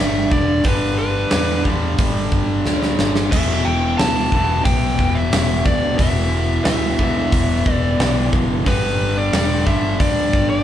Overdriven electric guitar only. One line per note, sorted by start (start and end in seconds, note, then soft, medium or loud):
0.00 0.64 G2 medium
0.00 0.64 D3 medium
0.00 0.68 G3 medium
0.65 1.63 G2 medium
0.65 1.64 D3 loud
0.65 1.64 G3 loud
1.64 3.31 G2 medium
1.64 3.31 D3 medium
1.64 3.35 G3 medium
3.32 4.35 E2 loud
3.32 4.31 B2 medium
3.32 4.31 E3 medium
4.32 5.97 E2 medium
4.32 5.98 B2 medium
4.32 5.97 E3 medium
5.98 6.97 E2 loud
5.98 6.97 B2 medium
5.98 6.97 E3 loud
6.98 8.65 E2 medium
6.98 8.65 B2 medium
6.98 8.64 E3 loud
8.66 9.64 G2 medium
8.66 9.65 D3 loud
8.66 9.64 G3 loud
9.66 10.63 G2 medium
9.66 10.63 D3 medium
9.66 10.63 G3 loud